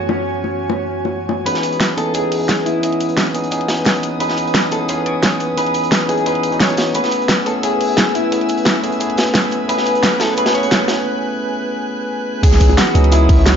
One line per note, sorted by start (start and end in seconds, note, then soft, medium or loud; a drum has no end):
0.00 1.44 F#2 medium
0.00 1.42 E3 medium
0.00 1.42 A3 medium
0.00 1.44 A3 medium
0.00 1.44 B3 medium
0.00 1.44 C#4 medium
0.00 1.45 E4 medium
0.00 0.10 F#4 medium
0.00 1.42 F#4 medium
0.00 1.43 C#5 medium
0.00 1.42 G#5 medium
0.00 1.45 G#5 medium
0.09 1.08 C#4 medium
0.09 high bongo medium
0.44 high bongo soft
0.70 high bongo medium
1.05 high bongo soft
1.29 high bongo medium
1.45 1.79 C#2 medium
1.45 1.95 E3 medium
1.45 1.95 B3 medium
1.45 1.96 C#4 medium
1.45 1.96 D#4 medium
1.45 1.96 G#4 medium
1.45 1.94 B4 loud
1.45 6.91 B4 medium
1.45 6.91 D#6 medium
1.45 closed hi-hat medium
1.55 snare soft
1.55 closed hi-hat soft
1.63 closed hi-hat medium
1.72 closed hi-hat soft
1.80 snare loud
1.80 closed hi-hat medium
1.97 2.31 C#2 medium
1.97 2.12 E3 medium
1.97 2.13 B3 medium
1.97 2.13 C#4 medium
1.97 2.13 D#4 medium
1.97 2.13 G#4 medium
1.97 2.14 A4 medium
1.97 closed hi-hat medium
2.14 2.81 E3 medium
2.14 2.81 B3 medium
2.14 2.81 C#4 medium
2.14 2.82 D#4 medium
2.14 2.67 G#4 medium
2.14 2.82 G#4 medium
2.14 closed hi-hat medium
2.32 3.16 C#2 medium
2.32 closed hi-hat medium
2.32 open hi-hat medium
2.49 snare loud
2.49 closed hi-hat medium
2.66 3.31 E4 medium
2.66 closed hi-hat medium
2.82 3.32 E3 medium
2.82 3.33 B3 medium
2.82 3.33 C#4 medium
2.82 3.33 G#4 medium
2.82 3.33 D#5 medium
2.82 closed hi-hat medium
2.92 closed hi-hat soft
3.00 closed hi-hat medium
3.09 closed hi-hat soft
3.17 snare loud
3.17 closed hi-hat medium
3.27 closed hi-hat soft
3.34 3.68 C#2 medium
3.34 3.50 E3 medium
3.34 3.50 B3 medium
3.34 3.50 C#4 medium
3.34 3.50 D#4 medium
3.34 3.50 G#4 medium
3.34 closed hi-hat medium
3.44 closed hi-hat soft
3.51 4.18 E3 medium
3.51 4.18 B3 medium
3.51 4.18 C#4 medium
3.51 4.19 D#4 medium
3.51 4.19 G#4 medium
3.51 closed hi-hat medium
3.61 closed hi-hat soft
3.68 3.88 C#2 medium
3.68 snare loud
3.68 closed hi-hat medium
3.77 closed hi-hat soft
3.85 4.19 G#1 medium
3.85 snare loud
3.85 closed hi-hat medium
3.86 snare loud
3.86 closed hi-hat medium
3.95 closed hi-hat soft
4.03 closed hi-hat medium
4.20 4.54 C#2 loud
4.20 4.69 E3 medium
4.20 4.70 B3 medium
4.20 4.70 C#4 medium
4.20 4.70 D#4 medium
4.20 4.71 G#4 medium
4.20 4.68 B4 loud
4.20 closed hi-hat medium
4.29 snare soft
4.29 closed hi-hat soft
4.38 closed hi-hat medium
4.47 closed hi-hat soft
4.54 snare loud
4.54 closed hi-hat medium
4.71 5.05 C#2 loud
4.71 4.87 E3 medium
4.71 4.87 B3 medium
4.71 4.87 C#4 medium
4.71 4.87 D#4 medium
4.71 4.87 G#4 medium
4.71 4.77 A4 loud
4.71 closed hi-hat medium
4.88 5.55 E3 medium
4.88 5.55 B3 medium
4.88 5.56 C#4 medium
4.88 5.56 D#4 medium
4.88 5.56 G#4 medium
4.88 5.06 B4 loud
4.88 closed hi-hat medium
5.06 5.91 C#2 medium
5.06 5.57 C#5 loud
5.06 closed hi-hat medium
5.23 snare loud
5.23 closed hi-hat medium
5.40 closed hi-hat medium
5.57 6.07 E3 medium
5.57 6.07 B3 medium
5.57 6.07 C#4 medium
5.57 6.07 D#4 medium
5.57 6.08 G#4 medium
5.57 6.09 B4 loud
5.57 closed hi-hat medium
5.66 closed hi-hat soft
5.74 closed hi-hat medium
5.84 closed hi-hat soft
5.91 snare loud
5.91 closed hi-hat medium
6.01 closed hi-hat soft
6.08 6.42 C#2 loud
6.08 6.24 E3 medium
6.08 6.24 B3 medium
6.08 6.24 C#4 medium
6.08 6.24 D#4 medium
6.08 6.26 G#4 medium
6.08 6.25 G#4 medium
6.08 closed hi-hat medium
6.17 closed hi-hat soft
6.25 6.50 E3 medium
6.25 6.50 B3 medium
6.25 6.50 C#4 medium
6.25 6.51 D#4 medium
6.25 6.51 G#4 medium
6.25 6.60 B4 loud
6.25 closed hi-hat medium
6.35 closed hi-hat soft
6.43 6.71 C#2 medium
6.43 closed hi-hat medium
6.51 6.59 E3 medium
6.51 6.59 B3 medium
6.51 6.59 C#4 medium
6.51 6.60 D#4 medium
6.51 6.60 F#4 medium
6.51 closed hi-hat soft
6.60 6.85 C#5 loud
6.60 snare loud
6.60 closed hi-hat medium
6.69 6.79 E2 medium
6.69 closed hi-hat soft
6.77 6.93 D#2 medium
6.77 snare loud
6.77 closed hi-hat medium
6.86 closed hi-hat soft
6.94 7.44 A3 medium
6.94 7.44 B3 medium
6.94 7.44 C#4 medium
6.94 7.45 E4 medium
6.94 7.45 G#4 medium
6.94 12.39 B4 medium
6.94 7.46 B4 medium
6.94 12.39 G#5 medium
6.94 9.66 E6 loud
6.94 closed hi-hat medium
7.04 snare soft
7.04 closed hi-hat soft
7.11 closed hi-hat medium
7.22 closed hi-hat soft
7.28 snare loud
7.28 closed hi-hat medium
7.45 7.79 F#1 loud
7.45 7.61 A3 medium
7.45 7.61 B3 medium
7.45 7.61 C#4 medium
7.45 7.61 E4 medium
7.45 7.62 G#4 medium
7.45 7.51 A4 medium
7.45 closed hi-hat medium
7.62 8.29 A3 medium
7.62 8.30 B3 medium
7.62 8.30 C#4 medium
7.62 8.30 E4 medium
7.62 8.15 G#4 medium
7.62 8.30 G#4 medium
7.62 closed hi-hat medium
7.80 8.65 F#1 medium
7.80 closed hi-hat medium
7.80 open hi-hat medium
7.97 snare loud
7.97 closed hi-hat medium
8.15 8.79 E4 medium
8.15 closed hi-hat medium
8.31 8.81 A3 medium
8.31 8.81 B3 medium
8.31 8.81 C#4 medium
8.31 8.82 E4 medium
8.31 8.82 G#4 medium
8.31 closed hi-hat medium
8.41 closed hi-hat soft
8.49 closed hi-hat medium
8.57 closed hi-hat soft
8.65 snare loud
8.65 closed hi-hat medium
8.75 closed hi-hat soft
8.83 9.16 F#1 loud
8.83 8.98 A3 medium
8.83 8.98 B3 medium
8.83 8.98 C#4 medium
8.83 8.99 E4 medium
8.83 8.99 G#4 medium
8.83 closed hi-hat medium
8.92 closed hi-hat soft
8.99 9.66 A3 medium
8.99 9.67 B3 medium
8.99 9.67 C#4 medium
8.99 9.67 E4 medium
8.99 9.67 G#4 medium
8.99 closed hi-hat medium
9.10 closed hi-hat soft
9.17 snare loud
9.17 closed hi-hat medium
9.26 closed hi-hat soft
9.34 9.68 C#2 medium
9.34 snare loud
9.34 closed hi-hat medium
9.44 closed hi-hat soft
9.51 closed hi-hat medium
9.68 10.02 F#1 medium
9.68 10.18 A3 medium
9.68 10.18 B3 medium
9.68 10.18 C#4 medium
9.68 10.19 E4 medium
9.68 10.19 G#4 medium
9.68 10.20 B4 loud
9.68 12.41 F#6 loud
9.68 closed hi-hat medium
9.78 snare soft
9.78 closed hi-hat soft
9.85 closed hi-hat medium
9.95 closed hi-hat soft
10.03 snare loud
10.03 closed hi-hat medium
10.20 10.35 A3 medium
10.20 10.35 B3 medium
10.20 10.36 C#4 medium
10.20 10.36 E4 medium
10.20 10.36 G#4 medium
10.20 10.37 A4 medium
10.20 snare loud
10.20 closed hi-hat medium
10.36 11.04 A3 medium
10.36 11.04 B3 medium
10.36 11.04 C#4 medium
10.36 11.04 E4 medium
10.36 11.05 G#4 medium
10.36 10.54 B4 loud
10.36 closed hi-hat medium
10.46 snare loud
10.46 closed hi-hat medium
10.54 11.08 C#5 loud
10.54 closed hi-hat medium
10.63 closed hi-hat medium
10.71 snare loud
10.71 closed hi-hat medium
10.88 snare loud
10.88 closed hi-hat medium
12.42 12.76 C#2 loud
12.42 12.92 E3 medium
12.42 12.93 B3 medium
12.42 12.93 C#4 medium
12.42 12.93 D#4 medium
12.42 12.75 G#4 medium
12.42 12.93 G#4 medium
12.42 13.56 B5 medium
12.42 13.56 D#6 medium
12.42 13.56 E6 loud
12.42 kick loud
12.42 closed hi-hat loud
12.42 closed hi-hat medium
12.42 crash loud
12.52 snare soft
12.52 closed hi-hat soft
12.60 kick medium
12.60 closed hi-hat medium
12.69 closed hi-hat soft
12.69 high bongo medium
12.77 13.13 F#4 medium
12.77 snare loud
12.77 closed hi-hat medium
12.77 closed hi-hat loud
12.87 closed hi-hat soft
12.94 13.28 C#2 loud
12.94 13.10 E3 medium
12.94 13.10 B3 medium
12.94 13.10 C#4 medium
12.94 13.10 D#4 medium
12.94 13.10 G#4 medium
12.94 closed hi-hat medium
13.04 closed hi-hat soft
13.12 13.36 E3 medium
13.12 13.36 B3 medium
13.12 13.36 C#4 medium
13.12 13.37 D#4 medium
13.12 13.44 E4 medium
13.12 13.37 G#4 medium
13.12 closed hi-hat medium
13.12 closed hi-hat loud
13.29 13.56 C#2 medium
13.29 kick loud
13.29 closed hi-hat medium
13.29 open hi-hat medium
13.38 13.45 E3 medium
13.38 13.45 B3 medium
13.38 13.45 C#4 medium
13.38 13.46 D#4 medium
13.38 13.46 F#4 medium
13.46 13.52 F#4 medium
13.46 snare loud
13.46 closed hi-hat loud